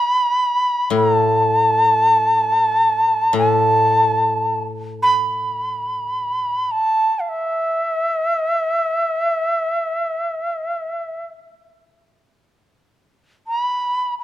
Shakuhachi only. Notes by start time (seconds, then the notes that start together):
Already playing: B5
0.96 A#5
1.15 A5
3.38 A5
5.02 B5
6.71 A5
7.19 F5
7.29 E5
13.47 A#5
13.60 B5
14.19 A#5